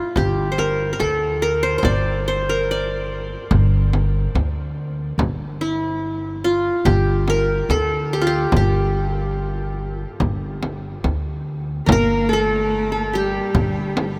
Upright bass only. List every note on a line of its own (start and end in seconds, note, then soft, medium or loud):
0.17 0.92 G1 medium
1.01 1.76 D2 medium
1.84 3.34 G1 medium
3.51 4.26 G1 medium
4.35 5.10 D2 medium
5.18 6.68 G1 medium
6.85 7.61 G1 medium
7.69 8.44 D2 medium
8.54 10.04 G1 medium
10.21 10.96 G1 medium
11.04 11.79 D2 medium
11.87 13.38 G1 medium
13.55 14.19 G1 medium